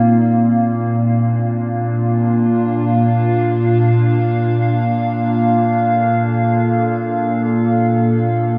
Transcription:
Already playing: A#2 A#3 C4 D5
0.40 D4
0.47 F4
0.70 F5
5.07 F4 F5
5.65 A4

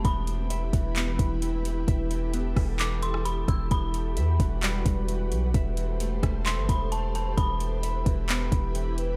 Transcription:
Already playing: A3 E5
0.04 E1 E3 E4 G4 B4 B5, kick, closed hi-hat
0.27 closed hi-hat
0.50 E5, closed hi-hat
0.73 E1 E3, kick, closed hi-hat
0.96 B3, clap, closed hi-hat
1.19 E1, kick, closed hi-hat
1.42 E3, closed hi-hat
1.65 closed hi-hat
1.88 E1 A4 E5, kick, closed hi-hat
2.10 E3, closed hi-hat
2.34 B3, closed hi-hat
2.56 E1 E5, kick, cross-stick, open hi-hat
2.79 E3 D6, clap, closed hi-hat
3.02 C6, closed hi-hat
3.14 cross-stick
3.25 B5, closed hi-hat
3.47 E1 E3 E6, kick, closed hi-hat
3.71 E1 E3 F#4 B4 B5, kick, closed hi-hat
3.94 closed hi-hat
4.17 E2 E5, closed hi-hat
4.39 E1 E3, kick, closed hi-hat
4.62 G3, clap, closed hi-hat
4.86 E1, kick, closed hi-hat
5.09 E3, closed hi-hat
5.31 B1, closed hi-hat
5.54 E1 G4 A4 C5 E5, kick, closed hi-hat
5.77 E3, closed hi-hat
6.00 A3, closed hi-hat
6.22 E1 E5, kick, cross-stick, closed hi-hat
6.46 E3 C6, clap, closed hi-hat
6.58 G1
6.69 E1 B5, kick, closed hi-hat
6.92 A5, closed hi-hat
7.15 E3 A5, closed hi-hat
7.37 E1 E3 E4 B4 B5, kick, closed hi-hat
7.60 closed hi-hat
7.83 E5, closed hi-hat
8.06 E1 E3, kick, closed hi-hat
8.29 B3, clap, closed hi-hat
8.52 E1, kick, closed hi-hat
8.75 E3, closed hi-hat
8.98 closed hi-hat

